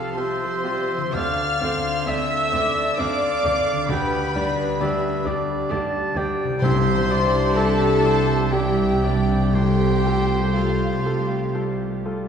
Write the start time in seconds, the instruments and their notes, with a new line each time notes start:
Already playing: grand piano C2 C4 G4 F5, harp C3 C4 G4 G5, viola section F3 F4, french horn section F3 G4, violin section A4 A5, clarinet A4, oboe F5, flute A5
0.15 viola section C3, grand piano C4 F4 G4, clarinet C5, violin section C5 C6, oboe E5, flute C6
0.43 viola section F3
0.64 viola section G3, grand piano C4 F4 G4
0.92 viola section F3
0.97 harp D3
1.01 harp C4
1.06 harp F4
1.10 grand piano D2, harp D5, violin section F5 F6, flute F6
1.15 double bass section D2, cello section D2, french horn section D3 A4, viola section C4 A4, oboe D5, clarinet F5
1.61 double bass section D2, cello section D2, grand piano C4 D4 D5, viola section C4 A4, oboe C5
2.06 double bass section D2, cello section D2, grand piano C4 D4 D5, viola section C4 A4, clarinet E5, violin section E5 E6, oboe E5, flute E6
2.52 double bass section D2, cello section D2, grand piano C4 D4 D5, viola section C4 A4, oboe D5
2.97 cello section D2, double bass section D2, grand piano C4 D4 D5, viola section C4 A4, violin section D5 D6, clarinet D5, oboe F5, flute D6
3.44 double bass section D2, cello section D2, grand piano C4 D4 D5, viola section C4 A4
3.72 harp D3
3.76 harp D4
3.81 harp G4
3.86 grand piano D2, double bass section D2, viola section G4, harp D5, violin section B5
3.90 cello section D2, viola section D4, french horn section G4, violin section B4, clarinet B4, oboe G5, flute B5
4.35 double bass section D2, cello section D2, grand piano G3 D4 D5, viola section D4 G4
4.80 double bass section D2, cello section D2, grand piano G3 D4 D5, viola section D4 G4, oboe E5
5.24 double bass section D2, cello section D2, grand piano G3 D4 D5, viola section D4 G4, oboe D5
5.69 double bass section D2, cello section D2, grand piano G3 D4 D5, viola section D4 G4, oboe A5
6.14 double bass section D2, cello section D2, grand piano G3 D4 D5, viola section D4 G4, oboe G5
6.44 harp C3
6.49 harp E4
6.53 harp G4
6.58 double bass section C2, french horn section E3, viola section D4 G4, violin section C5 C6, harp D5
6.62 grand piano C2, cello section C2, timpani C3, clarinet C5, oboe E5, flute C6
7.09 grand piano G3 E4 D5, oboe D5
7.54 grand piano G3 E4 D5, violin section A4 A5, clarinet A4, oboe E5, flute A5
8.04 grand piano G3 E4 D5, oboe C5
8.51 grand piano G3 E4 D5, viola section D4 G4, violin section G4 G5, clarinet G4, oboe E5, flute G5
9.04 grand piano G3 E4 D5, oboe D5
9.35 harp C3
9.40 harp F4
9.45 harp G4
9.49 harp A4, violin section G5, flute G5
9.53 grand piano C2, timpani C3, french horn section G3 A4, viola section A3 G4, violin section G4, clarinet G4, oboe C5
10.06 grand piano G3 F4 A4
10.54 grand piano G3 F4 A4, viola section A3 G4, clarinet F4, violin section F4 F5, flute F5
11.05 grand piano G3 F4 A4
11.54 grand piano G3 F4 A4
12.05 grand piano G3 F4 A4